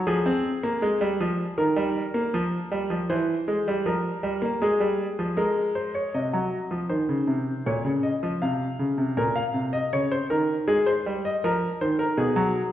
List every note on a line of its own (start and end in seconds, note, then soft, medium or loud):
0.07 0.26 F3 medium
0.07 1.54 G#4 medium
0.26 0.49 C4 medium
0.63 0.82 A#3 medium
0.82 1.01 G#3 medium
1.01 1.20 G3 medium
1.20 1.44 F3 medium
1.58 1.76 D#3 medium
1.58 3.05 A#4 medium
1.76 2.00 G3 medium
2.14 2.33 A#3 medium
2.34 2.57 F3 medium
2.72 2.90 G3 medium
2.90 3.09 F3 medium
3.10 3.33 E3 medium
3.10 3.83 C5 medium
3.48 3.66 G#3 medium
3.68 3.86 G3 medium
3.86 4.09 F3 medium
3.86 4.59 A#4 medium
4.23 4.42 G3 medium
4.42 4.61 A#3 medium
4.62 4.80 G#3 medium
4.62 5.36 G#4 medium
4.80 5.04 G3 medium
5.19 5.37 F3 medium
5.37 6.12 G#3 medium
5.37 5.61 A#4 medium
5.75 5.94 C5 medium
5.95 6.14 C#5 medium
6.14 6.33 C3 medium
6.14 6.88 D#5 medium
6.33 6.57 F#3 medium
6.71 6.90 F3 medium
6.89 7.09 D#3 medium
6.89 7.64 C5 medium
7.09 7.28 C#3 medium
7.27 7.51 C3 medium
7.66 7.85 A#2 medium
7.66 7.90 C#5 medium
7.85 8.08 C#3 medium
8.03 8.27 D#5 medium
8.23 8.41 F3 medium
8.42 8.65 C3 medium
8.42 9.15 F5 medium
8.79 8.98 C#3 medium
8.98 9.17 C3 medium
9.17 9.41 A#2 medium
9.17 9.36 A#4 medium
9.36 9.59 F5 medium
9.54 9.78 C3 medium
9.73 9.92 D#5 medium
9.93 10.16 C#3 medium
9.93 10.11 C#5 medium
10.12 10.30 C5 medium
10.30 10.54 D#3 medium
10.30 10.54 A#4 medium
10.68 10.91 G#3 medium
10.68 10.86 G#4 medium
10.86 11.10 C5 medium
11.06 11.29 G3 medium
11.25 11.43 D#5 medium
11.44 11.67 F3 medium
11.44 11.67 A#4 medium
11.81 12.04 D#3 medium
11.81 11.99 C5 medium
11.99 12.17 A#4 medium
12.18 12.35 B2 medium
12.18 12.72 G#4 medium
12.36 12.59 F#3 medium